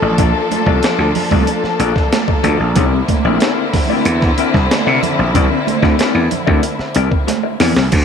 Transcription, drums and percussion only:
0.18 kick loud
0.18 closed hi-hat loud
0.18 low conga medium
0.51 closed hi-hat medium
0.51 high conga medium
0.66 kick medium
0.66 high conga medium
0.83 snare loud
0.83 closed hi-hat medium
0.83 muted conga soft
1.15 open hi-hat medium
1.15 muted conga soft
1.15 low conga medium
1.31 kick loud
1.31 high conga medium
1.47 closed hi-hat medium
1.64 snare soft
1.80 closed hi-hat medium
1.80 muted conga soft
1.96 kick loud
1.96 snare soft
2.13 snare loud
2.13 closed hi-hat medium
2.13 high conga medium
2.28 kick loud
2.44 closed hi-hat medium
2.44 low conga medium
2.76 kick loud
2.76 closed hi-hat loud
2.76 low conga medium
3.08 kick medium
3.08 closed hi-hat medium
3.08 high conga medium
3.25 high conga medium
3.40 snare loud
3.40 closed hi-hat medium
3.40 muted conga soft
3.73 kick loud
3.73 snare soft
3.73 open hi-hat medium
3.73 muted conga soft
3.73 low conga medium
3.89 high conga medium
4.05 closed hi-hat loud
4.05 muted conga soft
4.22 kick loud
4.22 snare soft
4.38 closed hi-hat medium
4.54 kick loud
4.54 snare soft
4.71 snare loud
4.71 closed hi-hat medium
4.71 high conga medium
5.03 closed hi-hat medium
5.03 low conga medium
5.35 kick loud
5.35 closed hi-hat medium
5.35 low conga medium
5.67 closed hi-hat medium
5.67 high conga medium
5.83 kick loud
5.83 snare soft
5.83 high conga medium
5.99 snare loud
5.99 closed hi-hat medium
6.31 closed hi-hat medium
6.31 low conga medium
6.47 kick loud
6.47 high conga medium
6.63 closed hi-hat loud
6.79 snare soft
6.95 closed hi-hat medium
6.95 muted conga soft
7.12 kick loud
7.28 snare medium
7.28 closed hi-hat loud
7.28 high conga medium
7.60 snare loud
7.60 open hi-hat medium
7.60 low conga medium
7.76 snare loud
7.92 kick loud
7.92 closed hi-hat loud
7.92 crash loud
7.92 muted conga soft
7.92 low conga medium

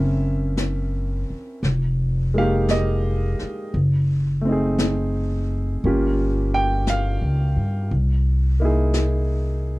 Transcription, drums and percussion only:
0.57 brush sweep soft
0.57 snare soft
0.57 hi-hat pedal medium
1.63 brush sweep soft
1.63 snare soft
2.69 brush sweep soft
2.69 snare soft
2.69 hi-hat pedal soft
3.39 snare soft
3.74 brush sweep soft
4.78 brush sweep soft
4.78 snare medium
4.78 hi-hat pedal medium
5.83 brush sweep soft
6.87 brush sweep soft
6.87 snare medium
6.87 hi-hat pedal soft
7.91 brush sweep soft
8.93 brush sweep soft
8.93 snare medium
8.93 hi-hat pedal medium

